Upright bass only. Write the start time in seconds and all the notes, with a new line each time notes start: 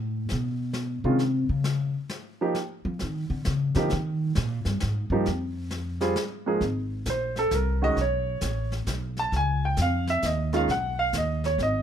Already playing: A2
0.32 B2
1.04 C3
1.49 C#3
2.85 F3
3.02 D#3
3.30 D3
3.47 C#3
3.75 D3
3.92 D#3
4.37 A#2
4.65 G2
4.83 G#2
5.10 G2
5.27 F2
6.61 G#1
7.06 A#1
7.51 C2
7.96 B1
8.42 A1
8.87 B1
9.32 C#2
9.78 F2
10.23 D#2
10.68 B1
11.13 D#2
11.58 G#1